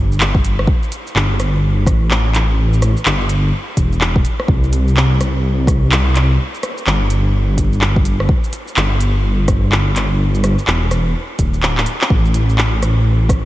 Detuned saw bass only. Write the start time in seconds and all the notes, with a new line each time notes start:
Already playing: G1
1.15 G1
1.87 A1
2.34 A1
3.06 G1
3.77 E1
4.48 C2
6.86 G1
8.77 G1
9.48 G1
9.95 G1
10.67 E1
11.39 D1
12.10 A1